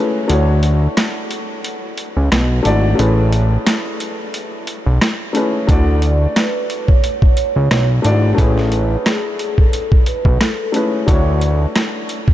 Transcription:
0.00 0.26 A3 medium
0.00 0.26 C#4 medium
0.00 0.27 E4 medium
0.00 0.27 G#4 medium
0.00 0.28 B4 medium
0.28 0.88 D2 loud
0.28 1.53 A3 medium
0.28 1.54 D4 medium
0.28 1.54 E4 medium
0.28 1.55 F#4 medium
0.28 closed hi-hat loud
0.32 1.55 C#5 medium
0.63 closed hi-hat medium
0.97 cross-stick medium
0.97 snare loud
0.97 closed hi-hat medium
1.31 closed hi-hat medium
1.65 closed hi-hat medium
1.98 closed hi-hat medium
2.17 2.30 C#2 medium
2.32 2.61 B1 medium
2.32 cross-stick medium
2.32 snare loud
2.32 closed hi-hat medium
2.63 2.95 G#1 medium
2.63 2.94 A3 medium
2.63 2.96 D4 medium
2.63 2.96 E4 medium
2.63 2.97 F#4 medium
2.63 closed hi-hat medium
2.67 2.97 D5 loud
2.95 4.22 A3 medium
2.95 4.23 C#4 medium
2.95 4.23 E4 medium
2.95 4.24 G#4 medium
2.95 closed hi-hat loud
2.99 3.58 A1 loud
2.99 4.24 B4 medium
3.33 closed hi-hat medium
3.67 cross-stick medium
3.67 snare loud
3.67 closed hi-hat medium
4.00 closed hi-hat medium
4.34 closed hi-hat medium
4.67 closed hi-hat medium
4.86 4.99 B1 medium
5.01 cross-stick medium
5.01 snare loud
5.01 closed hi-hat medium
5.33 5.65 A3 medium
5.33 5.66 C#4 medium
5.33 5.66 E4 medium
5.33 5.67 G#4 medium
5.33 5.67 B4 medium
5.33 closed hi-hat medium
5.67 6.27 D2 loud
5.67 6.93 A3 medium
5.67 6.93 D4 medium
5.67 6.94 E4 medium
5.67 6.94 F#4 medium
5.67 kick loud
5.67 closed hi-hat loud
5.71 6.95 D5 loud
6.02 6.32 D5 medium
6.02 closed hi-hat medium
6.36 6.86 B4 medium
6.36 cross-stick medium
6.36 snare loud
6.36 closed hi-hat loud
6.70 closed hi-hat medium
6.87 7.34 C#5 medium
6.87 kick medium
7.04 closed hi-hat medium
7.22 kick medium
7.36 7.86 C#5 medium
7.36 closed hi-hat medium
7.56 7.69 C#2 medium
7.71 8.00 B1 medium
7.71 cross-stick medium
7.71 snare loud
7.71 closed hi-hat medium
8.02 8.34 G#1 medium
8.02 8.33 A3 medium
8.02 8.35 D4 medium
8.02 8.35 E4 medium
8.02 8.36 F#4 medium
8.02 8.37 D5 loud
8.02 closed hi-hat medium
8.35 8.97 A1 loud
8.35 9.61 A3 medium
8.35 9.62 C#4 medium
8.35 9.62 E4 medium
8.35 9.63 G#4 medium
8.35 kick loud
8.35 closed hi-hat loud
8.39 9.63 B4 medium
8.57 snare soft
8.72 9.03 B4 medium
8.72 closed hi-hat medium
9.06 9.55 G#4 medium
9.06 cross-stick medium
9.06 snare loud
9.06 closed hi-hat medium
9.39 closed hi-hat medium
9.58 10.05 A4 medium
9.58 kick medium
9.73 closed hi-hat medium
9.92 kick medium
10.06 10.38 B4 medium
10.06 closed hi-hat medium
10.25 10.39 B1 medium
10.25 kick loud
10.41 10.71 A4 medium
10.41 cross-stick loud
10.41 snare loud
10.41 closed hi-hat medium
10.72 11.04 A3 medium
10.72 11.05 C#4 medium
10.72 11.05 E4 medium
10.72 11.06 G#4 medium
10.72 11.06 B4 medium
10.72 closed hi-hat medium
11.06 11.66 D2 loud
11.06 12.32 A3 medium
11.06 12.33 D4 medium
11.06 12.33 E4 medium
11.06 12.34 F#4 medium
11.06 kick loud
11.06 closed hi-hat loud
11.11 12.34 C#5 loud
11.41 closed hi-hat medium
11.76 cross-stick medium
11.76 snare loud
11.76 closed hi-hat loud
12.09 closed hi-hat medium
12.28 kick medium

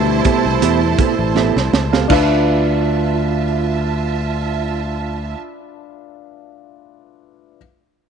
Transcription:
0.00 0.20 D2 medium
0.00 2.12 B2 soft
0.00 2.11 G3 medium
0.00 2.12 A3 soft
0.00 2.06 E4 medium
0.00 2.12 E4 medium
0.00 1.31 A4 medium
0.00 2.11 B4 medium
0.00 2.07 C5 medium
0.00 2.12 D5 loud
0.00 2.06 A5 medium
0.08 muted clean electric guitar stroke soft
0.24 0.44 B3 medium
0.24 0.44 G4 medium
0.24 0.44 A4 medium
0.24 0.44 E5 medium
0.24 kick medium
0.24 closed hi-hat medium
0.45 0.60 C2 medium
0.45 muted clean electric guitar stroke soft
0.62 0.94 E2 medium
0.62 0.81 B3 medium
0.62 0.81 G4 medium
0.62 0.81 A4 medium
0.62 0.81 E5 medium
0.62 closed hi-hat medium
0.82 muted clean electric guitar stroke soft
0.99 1.14 B3 soft
0.99 1.14 G4 medium
0.99 1.14 A4 medium
0.99 1.14 E5 medium
0.99 muted fingered electric bass stroke soft
0.99 kick medium
0.99 closed hi-hat medium
1.19 1.51 A1 medium
1.19 muted clean electric guitar stroke soft
1.36 1.55 B3 medium
1.36 1.55 G4 medium
1.36 1.55 A4 medium
1.36 1.56 E5 medium
1.36 snare medium
1.56 1.71 C2 medium
1.56 snare medium
1.73 2.05 C#2 medium
1.73 muted clean electric guitar stroke soft
1.73 snare medium
1.93 2.06 B3 soft
1.93 2.06 G4 soft
1.93 2.06 A4 soft
1.93 2.06 F5 soft
1.93 snare medium
2.08 5.34 D2 medium
2.08 5.31 D4 medium
2.08 5.59 D4 medium
2.08 5.33 F4 medium
2.08 5.34 F4 medium
2.08 5.61 F4 medium
2.08 5.34 B4 medium
2.08 5.34 E5 medium
2.08 5.34 A5 medium
2.08 kick loud
2.08 crash medium
2.12 5.62 B4 medium
2.12 5.36 E5 medium
2.12 5.64 E5 medium

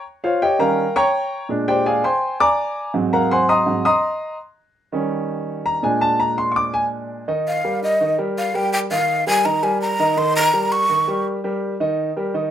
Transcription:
0.24 0.41 F4 medium
0.24 0.41 C5 medium
0.24 0.41 C#5 medium
0.24 0.41 F5 medium
0.42 0.60 G4 medium
0.42 0.60 C#5 medium
0.42 0.60 D#5 medium
0.42 0.59 G5 medium
0.59 0.83 D#3 medium
0.59 0.84 G3 soft
0.59 0.84 C#4 medium
0.59 0.93 A#4 medium
0.59 0.93 F5 medium
0.59 0.93 G5 medium
0.59 0.93 A#5 medium
0.96 1.46 C#5 medium
0.96 1.46 G5 medium
0.96 1.46 A#5 medium
0.96 1.46 C#6 loud
1.49 2.01 A#2 medium
1.49 2.01 G#3 medium
1.49 2.02 D4 medium
1.68 1.86 G4 medium
1.68 1.86 C5 medium
1.68 1.85 D5 medium
1.68 1.86 G5 medium
1.86 2.04 G#4 medium
1.86 2.04 D5 medium
1.86 2.04 F5 medium
1.86 2.03 G#5 medium
2.04 2.38 C5 medium
2.04 2.38 G5 medium
2.04 2.38 G#5 medium
2.04 2.38 C6 medium
2.40 2.91 D5 medium
2.40 2.91 G#5 medium
2.40 2.91 A#5 medium
2.40 2.91 D6 loud
2.94 3.65 G#2 medium
2.94 3.65 F#3 medium
2.94 3.66 C4 medium
3.13 3.31 A#4 medium
3.13 3.31 F5 medium
3.13 3.30 F#5 medium
3.13 3.30 A#5 medium
3.31 3.49 C5 medium
3.31 3.49 F#5 medium
3.31 3.49 G#5 medium
3.31 3.48 C6 loud
3.49 3.83 D#5 medium
3.49 3.83 A#5 medium
3.49 3.83 C6 medium
3.49 3.82 D#6 loud
3.66 3.83 G#2 medium
3.66 3.83 F#3 soft
3.66 3.83 C4 medium
3.85 4.36 D#5 medium
3.85 4.36 A#5 medium
3.85 4.36 C6 medium
3.85 4.35 D#6 loud
4.92 5.79 D#3 medium
4.92 5.79 G3 medium
4.92 5.80 C#4 medium
5.66 5.83 A#5 loud
5.83 7.24 A#2 medium
5.83 7.24 G#3 medium
5.83 7.24 D4 medium
5.83 6.01 G#5 medium
6.01 6.19 A5 loud
6.20 6.37 A#5 medium
6.38 6.55 C6 medium
6.52 6.54 C#6 medium
6.56 6.73 D6 loud
6.74 6.85 G#5 loud
7.28 7.58 D#3 medium
7.28 7.58 D#4 medium
7.28 7.58 D#5 medium
7.48 7.80 F5 medium
7.64 7.94 G3 medium
7.64 7.94 G4 medium
7.64 7.94 A#4 medium
7.84 8.17 D#5 medium
8.01 8.15 D#3 medium
8.01 8.15 D#4 medium
8.01 8.16 D#5 medium
8.18 8.48 G3 medium
8.18 8.48 G4 medium
8.18 8.48 A#4 medium
8.38 8.57 F5 medium
8.54 8.84 G3 medium
8.54 8.84 G4 medium
8.54 8.84 A#4 medium
8.54 8.72 G5 medium
8.73 8.79 G5 loud
8.91 9.20 D#3 medium
8.91 9.20 D#4 medium
8.91 9.21 D#5 medium
8.91 9.24 F5 medium
9.27 9.42 G3 medium
9.27 9.42 G4 medium
9.27 9.42 A#4 medium
9.27 9.47 G#5 loud
9.45 9.60 D#3 medium
9.45 9.60 D#4 medium
9.45 9.60 D#5 medium
9.45 9.65 A#5 loud
9.63 9.92 G3 medium
9.63 9.93 G4 medium
9.63 9.93 A#4 medium
9.63 9.81 G#5 medium
9.82 10.19 A#5 medium
9.99 10.14 D#3 medium
9.99 10.14 D#4 medium
9.99 10.15 D#5 medium
10.17 10.47 D#3 medium
10.17 10.47 D#4 medium
10.17 10.47 D#5 medium
10.17 10.35 C6 loud
10.36 10.74 A#5 loud
10.53 10.83 G3 medium
10.53 10.83 G4 medium
10.53 10.83 A#4 medium
10.72 11.26 C#6 loud
10.89 11.04 D#3 medium
10.89 11.05 D#4 medium
10.89 11.05 D#5 medium
11.08 11.37 G3 medium
11.08 11.38 G4 medium
11.08 11.38 A#4 medium
11.44 11.74 G3 medium
11.44 11.74 G4 medium
11.44 11.74 A#4 medium
11.80 12.10 D#3 medium
11.80 12.10 D#4 medium
11.80 12.10 D#5 medium
12.17 12.31 G3 medium
12.17 12.31 G4 medium
12.17 12.31 A#4 medium
12.34 12.49 D#3 medium
12.34 12.49 D#4 medium
12.34 12.49 D#5 medium

